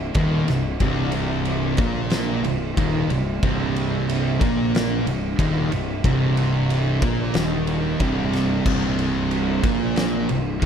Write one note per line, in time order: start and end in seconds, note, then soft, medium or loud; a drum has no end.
0.00 0.13 C1 medium
0.14 0.46 D#1 loud
0.14 0.48 D#2 medium
0.14 0.48 D#3 medium
0.14 kick loud
0.14 ride loud
0.47 0.78 C1 medium
0.47 0.75 C2 medium
0.47 snare soft
0.47 ride medium
0.80 1.75 C1 loud
0.80 1.78 C2 medium
0.80 1.79 C3 loud
0.80 kick loud
0.80 ride loud
1.12 ride medium
1.45 ride loud
1.77 2.40 A#1 medium
1.77 2.44 A#2 loud
1.77 2.45 A#3 loud
1.77 kick loud
1.77 ride medium
2.10 snare loud
2.10 ride loud
2.42 2.74 C1 medium
2.42 2.71 C2 medium
2.42 ride medium
2.77 3.07 D#1 medium
2.77 3.09 D#2 loud
2.77 3.10 D#3 loud
2.77 kick loud
2.77 ride loud
3.08 3.39 C1 medium
3.08 3.37 C2 medium
3.08 ride medium
3.42 4.36 C1 medium
3.42 4.40 C2 medium
3.42 4.40 C3 loud
3.42 kick loud
3.42 ride medium
3.76 ride medium
4.09 ride loud
4.41 5.02 A#1 loud
4.41 5.05 A#2 medium
4.41 5.06 A#3 loud
4.41 kick loud
4.41 ride medium
4.75 snare loud
4.75 ride loud
5.05 5.37 C1 medium
5.05 5.32 C2 medium
5.05 ride medium
5.38 5.69 D#1 loud
5.38 5.71 D#2 medium
5.38 5.71 D#3 loud
5.38 kick loud
5.38 ride loud
5.72 6.02 C1 medium
5.72 5.99 C2 medium
5.72 ride medium
6.04 6.98 C1 loud
6.04 7.01 C2 medium
6.04 7.01 C3 loud
6.04 kick loud
6.04 ride loud
6.37 ride medium
6.70 ride loud
7.01 7.32 A#1 loud
7.01 7.33 A#2 medium
7.01 7.34 A#3 loud
7.01 kick loud
7.01 ride medium
7.34 7.96 D#1 medium
7.34 7.99 D#2 medium
7.34 7.99 D#3 loud
7.34 snare loud
7.34 ride loud
7.67 ride medium
7.99 8.61 C1 loud
7.99 8.64 C2 loud
7.99 8.65 C3 medium
7.99 kick loud
7.99 ride loud
8.33 snare soft
8.33 ride medium
8.65 9.59 C1 medium
8.65 9.62 C2 medium
8.65 9.63 C3 loud
8.65 kick loud
8.65 crash loud
8.99 ride medium
9.31 ride loud
9.63 10.25 A#1 loud
9.63 10.28 A#2 loud
9.63 10.28 A#3 loud
9.63 kick loud
9.63 ride medium
9.96 snare loud
9.96 ride loud
10.29 10.60 C1 medium
10.29 10.56 C2 medium
10.29 ride medium
10.61 10.66 D#1 medium
10.61 10.66 D#2 medium
10.61 10.66 D#3 loud
10.61 kick loud
10.61 ride loud